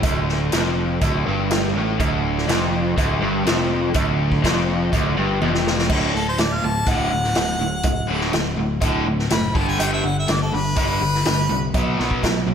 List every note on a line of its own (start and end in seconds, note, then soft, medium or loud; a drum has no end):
0.03 0.49 D1 medium
0.03 0.52 D2 loud
0.03 kick loud
0.03 closed hi-hat medium
0.03 cowbell loud
0.29 snare soft
0.52 0.98 F1 medium
0.52 1.01 F2 medium
0.52 snare loud
0.52 closed hi-hat medium
0.52 cowbell medium
1.01 1.25 D1 loud
1.01 1.25 D2 loud
1.01 kick loud
1.01 closed hi-hat medium
1.01 cowbell medium
1.26 1.72 G1 medium
1.26 1.74 G2 loud
1.51 snare loud
1.51 closed hi-hat medium
1.51 cowbell medium
1.75 1.98 A1 loud
1.75 1.99 A2 loud
2.00 2.45 D1 loud
2.00 2.47 D2 loud
2.00 kick loud
2.00 closed hi-hat medium
2.00 cowbell medium
2.38 snare soft
2.47 2.94 F1 medium
2.47 2.96 F2 loud
2.47 snare loud
2.47 closed hi-hat medium
2.47 cowbell medium
2.96 3.20 D1 medium
2.96 3.20 D2 loud
2.96 kick loud
2.96 closed hi-hat medium
2.96 cowbell medium
3.20 3.44 G1 medium
3.20 3.45 G2 loud
3.45 3.92 F1 medium
3.45 3.93 F2 loud
3.45 snare loud
3.45 closed hi-hat medium
3.45 cowbell medium
3.94 4.40 D1 medium
3.94 4.42 D2 loud
3.94 kick loud
3.94 closed hi-hat medium
3.94 cowbell loud
4.32 kick medium
4.43 4.89 F1 medium
4.43 4.91 F2 loud
4.43 kick medium
4.43 snare loud
4.43 closed hi-hat medium
4.43 cowbell medium
4.92 5.16 D1 medium
4.92 5.16 D2 loud
4.92 kick loud
4.92 closed hi-hat medium
4.92 cowbell medium
5.16 5.40 G1 medium
5.16 5.40 G2 loud
5.41 5.87 F1 medium
5.41 5.89 F2 loud
5.41 high tom medium
5.41 cowbell medium
5.55 snare medium
5.67 snare medium
5.79 snare medium
5.89 6.11 D1 medium
5.89 6.12 D2 loud
5.89 6.13 A2 medium
5.89 6.13 D3 loud
5.89 kick loud
5.89 crash loud
5.89 cowbell loud
6.13 6.36 D1 medium
6.13 6.36 D2 medium
6.13 6.36 A2 medium
6.13 6.26 A4 medium
6.13 snare soft
6.29 6.43 C5 medium
6.38 6.59 D1 medium
6.38 6.60 D2 medium
6.38 6.60 A2 medium
6.38 snare loud
6.38 closed hi-hat medium
6.38 cowbell medium
6.42 6.55 D5 medium
6.53 6.68 F5 medium
6.62 6.85 D1 medium
6.62 6.85 D2 medium
6.62 6.85 A2 medium
6.66 6.90 A5 medium
6.86 7.08 D1 medium
6.86 7.09 D2 medium
6.86 7.10 A2 loud
6.86 7.11 D3 loud
6.86 8.30 F#5 loud
6.86 kick loud
6.86 closed hi-hat medium
6.86 cowbell medium
7.11 7.33 D1 medium
7.11 7.33 D2 medium
7.11 7.33 A2 medium
7.24 snare soft
7.35 7.57 D1 medium
7.35 7.57 D2 medium
7.35 7.58 A2 medium
7.35 snare loud
7.35 closed hi-hat medium
7.35 cowbell medium
7.59 7.81 D1 medium
7.59 7.82 D2 medium
7.59 7.82 A2 medium
7.83 8.06 D1 medium
7.83 8.06 D2 medium
7.83 8.06 A2 medium
7.83 kick loud
7.83 closed hi-hat medium
7.83 cowbell medium
8.07 8.30 D1 medium
8.07 8.31 D2 loud
8.07 8.31 A2 loud
8.07 8.32 D3 loud
8.21 snare soft
8.32 8.54 D1 medium
8.32 8.55 D2 medium
8.32 8.55 A2 medium
8.32 snare loud
8.32 closed hi-hat medium
8.32 cowbell medium
8.57 8.79 D1 medium
8.57 8.79 D2 medium
8.57 8.80 A2 medium
8.80 9.03 D1 medium
8.80 9.04 D2 medium
8.80 9.05 A2 medium
8.80 9.05 D3 loud
8.80 kick loud
8.80 closed hi-hat medium
8.80 cowbell medium
9.05 9.27 D1 medium
9.05 9.28 D2 medium
9.05 9.28 A2 medium
9.19 snare soft
9.30 9.52 F#1 medium
9.30 9.52 D2 medium
9.30 9.53 A2 medium
9.30 9.58 B5 medium
9.30 snare loud
9.30 closed hi-hat medium
9.30 cowbell medium
9.54 9.76 G1 medium
9.54 9.77 G2 medium
9.54 9.78 D3 loud
9.54 9.78 G3 loud
9.54 9.67 A5 medium
9.54 kick loud
9.68 9.83 G#5 medium
9.78 10.01 G1 medium
9.78 10.01 G2 medium
9.78 10.02 D3 loud
9.78 10.03 G3 loud
9.78 9.92 G5 medium
9.78 closed hi-hat medium
9.78 cowbell medium
9.93 10.08 E5 medium
10.02 10.25 G1 medium
10.02 10.25 G2 medium
10.02 10.26 D3 medium
10.02 10.17 F#5 medium
10.19 10.34 E5 medium
10.27 10.50 G1 medium
10.27 10.50 G2 medium
10.27 10.50 D3 medium
10.27 snare loud
10.27 closed hi-hat medium
10.27 cowbell medium
10.32 10.42 D5 medium
10.42 10.56 A4 medium
10.52 10.74 G1 medium
10.52 10.74 G2 medium
10.52 10.75 D3 medium
10.52 10.77 B4 medium
10.76 10.98 G1 medium
10.76 10.99 G2 medium
10.76 11.00 D3 loud
10.76 11.00 G3 loud
10.76 11.72 B4 loud
10.76 kick loud
10.76 closed hi-hat medium
10.76 cowbell medium
11.01 11.22 G1 medium
11.01 11.23 G2 medium
11.01 11.23 D3 medium
11.15 snare soft
11.25 11.48 G1 medium
11.25 11.47 G2 medium
11.25 11.48 D3 medium
11.25 snare loud
11.25 closed hi-hat medium
11.25 cowbell medium
11.49 11.72 C2 medium
11.49 11.72 G2 medium
11.49 11.72 D3 medium
11.74 11.95 B1 loud
11.74 11.97 B2 medium
11.74 11.97 F#3 medium
11.74 11.98 B3 loud
11.74 kick loud
11.74 closed hi-hat medium
11.74 cowbell loud
11.98 12.20 B1 medium
11.98 12.21 B2 loud
11.98 12.22 F#3 loud
11.98 12.22 B3 loud
11.98 snare soft
12.11 kick medium
12.23 12.44 B1 medium
12.23 12.45 B2 medium
12.23 12.45 F#3 medium
12.23 kick medium
12.23 snare loud
12.23 closed hi-hat medium
12.23 cowbell medium
12.47 12.54 B1 medium
12.47 12.54 B2 medium
12.47 12.54 F#3 medium